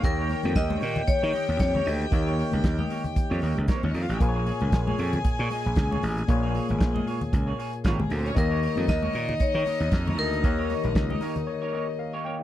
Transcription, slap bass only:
X:1
M:4/4
L:1/16
Q:"Swing 16ths" 1/4=115
K:Ebmix
V:1 name="Slap bass" clef=bass
E,,3 F,, E,,2 B,,2 z E, z E,, F,,2 =D,,2 | E,,3 D,, E,,2 z3 F,, E,, D,, z E,, F,, =A,,, | B,,,3 D,, B,,,2 F,,2 z B,, z B,,, D,,2 =A,,,2 | B,,,3 A,,, B,,,2 z2 D,,2 z2 A,,,2 =D,,2 |
E,,3 F,, E,,2 B,,2 z E, z E,, F,,2 =D,,2 | E,,3 B,,, D,,2 z8 z2 |]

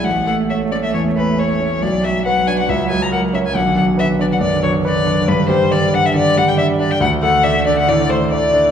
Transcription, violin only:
X:1
M:4/4
L:1/16
Q:1/4=138
K:Bdor
V:1 name="Violin"
f2 f2 e2 d e c2 B2 c4 | d2 e2 f2 g f e2 g ^a f2 e g | f2 f2 e2 d f d2 c2 d4 | [K:Dmix] B2 c2 d2 f e d2 f g e2 d g |
f2 f2 e2 d f d2 c2 d4 |]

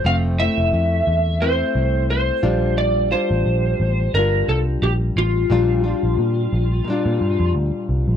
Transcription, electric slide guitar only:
X:1
M:4/4
L:1/8
Q:"Swing 16ths" 1/4=88
K:Bblyd
V:1 name="Electric slide guitar"
f e3 c2 c2 | d c3 B A G F- | F6 z2 |]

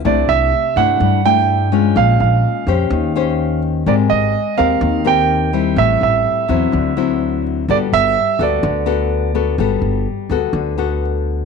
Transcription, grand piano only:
X:1
M:4/4
L:1/8
Q:1/4=126
K:G
V:1 name="Grand piano"
d e2 f2 g3 | =f f6 z | d _e2 =f2 g3 | e e6 z |
d e2 d4- d- | d6 z2 |]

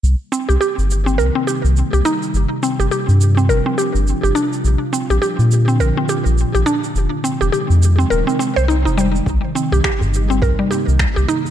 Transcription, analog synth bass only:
X:1
M:4/4
L:1/16
Q:"Swing 16ths" 1/4=104
K:Cm
V:1 name="Analog synth bass" clef=bass
C,, z2 C,, z G,,,3 C,, z2 C,, z C,, z2 | G,,, z2 G,,, z G,,3 G,,, z2 G,,, z G,,, z2 | B,,, z2 B,,, z B,,3 B,,, z2 B,,, z B,,, z2 | F,,, z2 F,,, z F,,3 E,,, z2 C,,2 F,,,3 |
C,, z2 C,, z G,,,3 C,, z2 C,, z C,, z2 |]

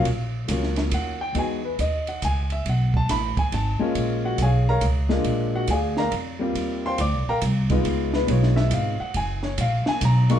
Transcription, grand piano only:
X:1
M:3/4
L:1/16
Q:"Swing" 1/4=139
K:Ebm
V:1 name="Grand piano"
z8 g2 =g2 | ^g2 =B2 ^d2 ^f2 g2 =e2 | g2 =a2 c'2 _a2 =a3 z | z2 [Gg]2 [Adfa]2 [Bdfb]2 z4 |
z2 [Gg]2 [A=dfa]2 [Bdfb]2 z4 | z2 [=cf=g=c']2 [=d=d']2 [Bfgb]2 z4 | z2 c2 d2 _f2 =f2 g2 | a2 d2 f2 a2 b2 d'2 |]
V:2 name="Grand piano"
z4 [G,B,DF]6 z2 | [^G,=B,^D^F]2 z8 z2 | z8 z2 [A,B,DF]2- | [A,B,DF]4 z6 [A,B,=DF]2- |
[A,B,=DF]4 z6 [=G,B,=CF]2- | [=G,B,=CF]4 z6 [A,_CEF]2- | [A,CEF]4 [A,CEF]6 z2 | z8 z2 [A,B,=DF]2 |]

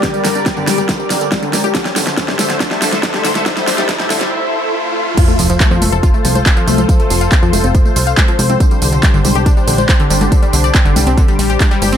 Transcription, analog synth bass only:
X:1
M:4/4
L:1/16
Q:1/4=140
K:F
V:1 name="Analog synth bass" clef=bass
z2 G,,,2 z G,, G,,, G,,,2 z G,,,2 z2 G,,,2 | z2 A,,,2 z A,, A,,, A,,,2 z A,,,2 z2 A,,,2 | z2 A,,,2 z A,, A,,, A,,, z8 | z2 F,,,2 z F,, F,,, F,,,2 z C,,2 z2 C,,2 |
z2 F,,,2 z F,, F,,, F,,,2 z C,,2 z2 C,,2 | z2 C,,2 z G,,, C,, C,,2 z B,,,2 z2 G,,,2 | z2 C,,2 z G,,, C,, C,,2 z B,,,2 z2 G,,,2 |]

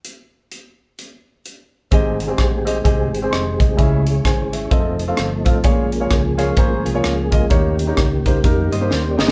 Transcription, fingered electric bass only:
X:1
M:4/4
L:1/8
Q:"Swing" 1/4=129
K:Ab
V:1 name="Fingered electric bass" clef=bass
z8 | A,,,2 B,,,2 C,, A,,, F,,, C,, | D,,2 A,,,2 F,,,2 G,,, =A,,, | B,,,2 D,,2 A,,, C,, D,,2 |
E,,2 D,,2 F,, G,, E,, G,,, |]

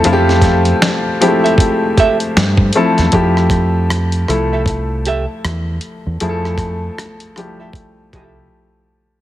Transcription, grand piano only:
X:1
M:4/4
L:1/8
Q:"Swing 16ths" 1/4=78
K:F
V:1 name="Grand piano"
[F,A,CEFG]3 [F,_A,=A,CEG]4 [F,A,CEA] | [F,A,EG]3 [F,A,EA]4 z | [F,A,E_A=A]3 [F,G,A,EG]2 [F,A,EG]3 |]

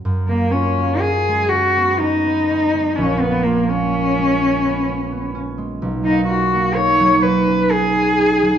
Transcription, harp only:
X:1
M:3/4
L:1/16
Q:1/4=63
K:F#
V:1 name="Harp"
[Geac']12- | [Geac']12 | z12 |]
V:2 name="Harp"
F,, A, E A, C G, C B, C B, C G, | A,,, A, E A, C G, C B, C B, C G, | B,,, A, E A, D F, D C D C D F, |]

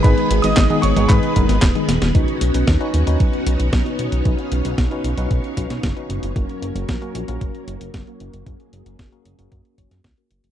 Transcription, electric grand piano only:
X:1
M:4/4
L:1/16
Q:1/4=114
K:Blyd
V:1 name="Electric grand piano"
[Bb]3 [dd']3 [cc']2 [Bb]4 z4 | z16 | z16 | z16 |
z16 |]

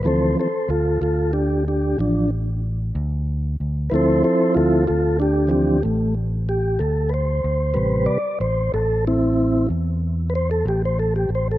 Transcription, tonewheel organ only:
X:1
M:12/8
L:1/16
Q:3/8=62
K:Ddor
V:1 name="Tonewheel organ"
[ABc]2 [Ac]2 [FA]2 [FA]2 [DG]2 [DG]2 [F,D]2 z8 z2 | [ABc]2 [Ac]2 [FA]2 [FA]2 [DG]2 [DG]2 A,2 z2 G2 A2 [Bc]4- | [Bc]2 d2 c2 A2 [CE]4 z4 [Bc] A G c A G c A |]
V:2 name="Tonewheel organ" clef=bass
[E,F,C]2 z16 z6 | [F,CE]6 z4 [E,F,C]2 z12 | [C,G,B]2 z16 z6 |]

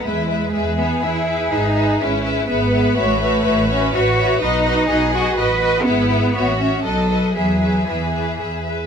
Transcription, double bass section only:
X:1
M:3/4
L:1/8
Q:1/4=123
K:E
V:1 name="Double bass section" clef=bass
E,,2 E,,2 E,,2 | G,,,2 G,,,2 G,,,2 | A,,,2 A,,,2 A,,,2 | B,,,2 B,,,2 A,,,2 |
G,,,2 A,,,2 B,,,2 | E,,2 E,,2 E,,2 |]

